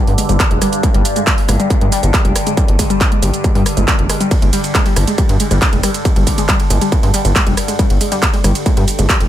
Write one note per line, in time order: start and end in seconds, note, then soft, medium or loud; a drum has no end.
0.00 9.28 G2 medium
0.00 9.28 D3 medium
0.07 0.15 G2 medium
0.07 open hi-hat medium
0.18 0.23 G#3 medium
0.18 open hi-hat loud
0.18 shaker medium
0.29 0.37 G1 medium
0.29 0.36 G3 medium
0.29 closed hi-hat medium
0.29 shaker soft
0.40 kick loud
0.40 clap loud
0.40 closed hi-hat medium
0.40 shaker soft
0.51 0.59 F1 medium
0.51 0.56 G#3 medium
0.51 closed hi-hat medium
0.62 0.69 G3 loud
0.62 cross-stick medium
0.62 open hi-hat loud
0.62 shaker medium
0.73 closed hi-hat medium
0.73 shaker soft
0.83 0.88 G#3 medium
0.83 kick loud
0.83 closed hi-hat medium
0.83 shaker soft
0.94 1.02 G1 medium
0.94 1.01 G3 loud
0.94 closed hi-hat medium
1.05 open hi-hat loud
1.05 shaker medium
1.16 1.21 G#3 medium
1.16 closed hi-hat medium
1.16 shaker soft
1.27 1.34 G3 loud
1.27 kick loud
1.27 clap loud
1.27 closed hi-hat medium
1.27 shaker soft
1.38 open hi-hat medium
1.49 1.57 G1 medium
1.49 1.53 G#3 medium
1.49 cross-stick medium
1.49 open hi-hat loud
1.49 shaker medium
1.60 1.67 G3 loud
1.60 closed hi-hat medium
1.60 shaker soft
1.70 kick loud
1.70 closed hi-hat medium
1.70 shaker soft
1.81 1.89 G2 medium
1.81 1.86 G#3 medium
1.81 closed hi-hat medium
1.92 1.99 G3 loud
1.92 open hi-hat loud
1.92 shaker medium
2.03 2.11 G1 medium
2.03 closed hi-hat medium
2.03 shaker soft
2.14 2.19 G#3 medium
2.14 kick loud
2.14 clap loud
2.14 closed hi-hat medium
2.14 shaker soft
2.25 2.33 F1 medium
2.25 2.32 G3 loud
2.25 closed hi-hat medium
2.36 cross-stick medium
2.36 open hi-hat loud
2.36 shaker medium
2.47 2.51 G#3 medium
2.47 closed hi-hat medium
2.47 shaker soft
2.57 2.65 G3 medium
2.57 kick loud
2.57 closed hi-hat medium
2.57 shaker soft
2.68 2.76 G1 medium
2.68 closed hi-hat medium
2.79 2.84 G#3 medium
2.79 kick medium
2.79 open hi-hat loud
2.79 shaker medium
2.90 2.97 G3 loud
2.90 closed hi-hat medium
2.90 shaker soft
3.01 kick loud
3.01 clap loud
3.01 closed hi-hat medium
3.01 shaker soft
3.12 3.16 G#3 medium
3.12 closed hi-hat medium
3.23 3.31 G1 medium
3.23 3.30 G3 loud
3.23 open hi-hat loud
3.23 shaker medium
3.34 closed hi-hat medium
3.34 shaker soft
3.44 3.49 G#3 medium
3.44 kick loud
3.44 closed hi-hat medium
3.44 shaker soft
3.55 3.63 G2 medium
3.55 3.62 G3 loud
3.55 open hi-hat medium
3.66 cross-stick medium
3.66 open hi-hat loud
3.66 shaker medium
3.77 3.85 G1 medium
3.77 3.82 G#3 medium
3.77 closed hi-hat medium
3.77 shaker soft
3.88 3.95 G3 loud
3.88 kick loud
3.88 clap loud
3.88 closed hi-hat medium
3.88 shaker soft
3.99 4.07 F1 medium
3.99 closed hi-hat medium
4.09 4.14 G#3 medium
4.09 cross-stick medium
4.09 open hi-hat loud
4.09 shaker medium
4.21 4.27 G3 loud
4.21 closed hi-hat medium
4.21 shaker soft
4.31 kick loud
4.31 closed hi-hat medium
4.31 ride medium
4.31 shaker soft
4.42 4.50 G1 loud
4.42 4.47 G#3 medium
4.42 closed hi-hat medium
4.42 ride medium
4.53 4.60 G3 loud
4.53 open hi-hat loud
4.53 ride medium
4.53 shaker medium
4.64 closed hi-hat medium
4.64 ride medium
4.64 shaker soft
4.75 4.79 G#3 medium
4.75 kick loud
4.75 clap loud
4.75 closed hi-hat medium
4.75 ride medium
4.75 shaker soft
4.86 4.93 G3 loud
4.86 open hi-hat medium
4.86 ride medium
4.96 5.05 G1 medium
4.96 cross-stick medium
4.96 open hi-hat loud
4.96 ride medium
4.96 shaker medium
5.07 5.12 G#3 medium
5.07 closed hi-hat medium
5.07 ride medium
5.07 shaker soft
5.18 5.25 G3 loud
5.18 kick loud
5.18 closed hi-hat medium
5.18 ride medium
5.18 shaker soft
5.29 5.37 G2 medium
5.29 closed hi-hat medium
5.29 ride medium
5.40 5.45 G#3 medium
5.40 open hi-hat loud
5.40 ride medium
5.40 shaker medium
5.51 5.59 G1 medium
5.51 5.58 G3 loud
5.51 closed hi-hat soft
5.51 ride medium
5.51 shaker soft
5.62 kick loud
5.62 clap loud
5.62 closed hi-hat medium
5.62 ride medium
5.62 shaker soft
5.73 5.81 F1 medium
5.73 5.77 G#3 medium
5.73 closed hi-hat medium
5.73 ride medium
5.83 5.91 G3 loud
5.83 cross-stick medium
5.83 open hi-hat loud
5.83 ride medium
5.83 shaker medium
5.94 closed hi-hat medium
5.94 ride medium
5.94 shaker soft
6.05 6.10 G#3 medium
6.05 kick loud
6.05 closed hi-hat medium
6.05 ride medium
6.05 shaker soft
6.16 6.24 G1 medium
6.16 6.23 G3 loud
6.16 closed hi-hat medium
6.16 ride medium
6.27 kick medium
6.27 open hi-hat loud
6.27 ride medium
6.27 shaker medium
6.38 6.43 G#3 medium
6.38 closed hi-hat soft
6.38 ride medium
6.38 shaker soft
6.49 6.56 G3 loud
6.49 kick loud
6.49 clap loud
6.49 closed hi-hat medium
6.49 ride medium
6.49 shaker soft
6.60 closed hi-hat soft
6.60 ride medium
6.70 6.79 G1 medium
6.70 6.75 G#3 medium
6.70 open hi-hat loud
6.70 ride medium
6.70 shaker medium
6.81 6.88 G3 loud
6.81 closed hi-hat soft
6.81 ride medium
6.81 shaker soft
6.92 kick loud
6.92 closed hi-hat medium
6.92 ride medium
6.92 shaker soft
7.03 7.11 G2 medium
7.03 7.08 G#3 medium
7.03 open hi-hat medium
7.03 ride medium
7.14 7.21 G3 loud
7.14 open hi-hat loud
7.14 ride medium
7.14 shaker medium
7.25 7.33 G1 medium
7.25 closed hi-hat soft
7.25 ride medium
7.25 shaker soft
7.36 7.40 G#3 medium
7.36 kick loud
7.36 clap loud
7.36 closed hi-hat medium
7.36 ride medium
7.36 shaker soft
7.47 7.55 F1 medium
7.47 7.54 G3 loud
7.47 closed hi-hat soft
7.47 ride medium
7.57 cross-stick medium
7.57 open hi-hat loud
7.57 ride medium
7.57 shaker medium
7.68 7.73 G#3 medium
7.68 closed hi-hat medium
7.68 ride medium
7.68 shaker soft
7.79 7.86 G3 loud
7.79 kick loud
7.79 closed hi-hat medium
7.79 ride medium
7.79 shaker soft
7.90 7.98 G1 medium
7.90 closed hi-hat medium
7.90 ride medium
8.01 8.06 G#3 medium
8.01 open hi-hat loud
8.01 ride medium
8.01 shaker medium
8.12 8.19 G3 loud
8.12 closed hi-hat medium
8.12 ride medium
8.12 shaker soft
8.22 kick loud
8.22 clap loud
8.22 closed hi-hat medium
8.22 ride medium
8.22 shaker soft
8.34 8.38 G#3 medium
8.34 open hi-hat medium
8.34 ride medium
8.44 8.53 G1 medium
8.44 8.51 G3 loud
8.44 cross-stick medium
8.44 open hi-hat loud
8.44 ride medium
8.44 shaker medium
8.55 closed hi-hat medium
8.55 ride medium
8.55 shaker soft
8.66 8.71 G#3 medium
8.66 kick loud
8.66 closed hi-hat medium
8.66 ride medium
8.66 shaker soft
8.77 8.85 G2 medium
8.77 8.84 G3 loud
8.77 closed hi-hat medium
8.77 ride medium
8.88 open hi-hat loud
8.88 ride medium
8.88 shaker medium
8.99 9.07 G1 medium
8.99 9.03 G#3 medium
8.99 closed hi-hat medium
8.99 ride medium
8.99 shaker soft
9.09 9.17 G3 loud
9.09 kick loud
9.09 clap loud
9.09 closed hi-hat medium
9.09 ride medium
9.09 shaker soft
9.20 9.28 F1 medium
9.20 closed hi-hat soft
9.20 ride medium